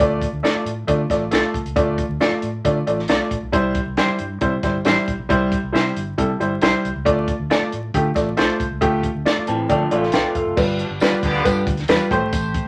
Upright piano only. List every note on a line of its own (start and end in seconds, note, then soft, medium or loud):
0.00 0.24 A3 medium
0.00 0.24 F4 medium
0.00 0.24 D5 loud
0.43 0.68 A3 medium
0.43 0.69 F4 medium
0.43 0.69 D5 medium
0.87 1.00 A3 medium
0.87 1.00 F4 medium
0.87 1.01 D5 medium
1.10 1.23 A3 medium
1.10 1.22 F4 medium
1.10 1.23 D5 medium
1.31 1.57 A3 medium
1.31 1.57 F4 medium
1.31 1.57 A4 medium
1.76 2.01 A3 medium
1.76 2.01 F4 medium
1.76 2.01 D5 medium
2.20 2.45 A3 medium
2.20 2.45 F4 medium
2.20 2.46 D5 medium
2.64 2.77 A3 medium
2.64 2.77 F4 medium
2.64 2.78 D5 medium
2.87 2.99 A3 medium
2.87 3.00 F4 medium
2.87 2.99 D5 medium
3.09 3.34 A3 medium
3.09 3.34 F4 medium
3.09 3.34 D5 medium
3.52 3.78 G3 medium
3.52 3.78 E4 medium
3.52 3.78 C5 loud
3.97 4.22 G3 medium
3.97 4.22 E4 medium
3.97 4.22 C5 medium
4.41 4.54 G3 medium
4.41 4.54 E4 medium
4.41 4.54 C5 medium
4.64 4.76 G3 medium
4.64 4.76 E4 medium
4.64 4.76 C5 medium
4.85 5.10 G3 medium
4.85 5.10 E4 medium
4.85 5.10 C5 medium
5.29 5.54 G3 loud
5.29 5.54 E4 medium
5.29 5.55 C5 loud
5.72 5.98 G3 medium
5.72 5.98 E4 medium
5.72 5.98 C5 medium
6.18 6.30 G3 medium
6.18 6.30 E4 medium
6.18 6.30 A4 medium
6.40 6.52 G3 medium
6.40 6.52 E4 medium
6.40 6.53 C5 medium
6.62 6.87 G3 medium
6.62 6.87 E4 medium
6.62 6.87 C5 medium
7.05 7.30 A3 medium
7.05 7.30 F4 medium
7.05 7.31 D5 loud
7.51 7.75 A3 medium
7.51 7.75 F4 medium
7.51 7.75 D5 medium
7.95 8.07 A3 medium
7.95 8.07 F4 medium
7.95 8.07 G4 medium
8.15 8.28 A3 medium
8.15 8.28 F4 medium
8.15 8.28 D5 medium
8.37 8.62 A3 medium
8.37 8.62 F4 medium
8.37 8.62 C5 medium
8.81 9.06 A3 loud
8.81 9.06 F4 medium
8.81 9.06 G4 loud
9.25 9.50 A3 medium
9.25 9.51 F4 medium
9.25 9.50 D5 medium
9.48 9.68 A5 medium
9.69 9.82 A3 medium
9.69 9.82 F4 medium
9.69 9.82 D5 medium
9.69 10.10 G5 medium
9.91 10.04 A3 medium
9.91 10.04 F4 medium
9.91 10.04 D5 medium
10.13 10.35 B4 medium
10.13 10.34 F5 medium
10.13 10.34 G5 medium
10.36 10.78 A4 medium
10.36 10.77 F5 medium
10.56 10.82 G3 medium
10.56 10.82 F4 medium
10.56 10.82 B4 medium
11.01 11.26 G3 medium
11.01 11.26 F4 medium
11.01 11.27 B4 medium
11.44 11.70 G3 medium
11.44 11.70 F4 medium
11.44 11.70 B4 medium
11.89 12.11 G3 medium
11.89 12.11 F4 medium
11.89 12.11 B4 loud
12.11 12.63 A3 medium
12.11 12.64 G4 medium
12.11 12.64 C5 medium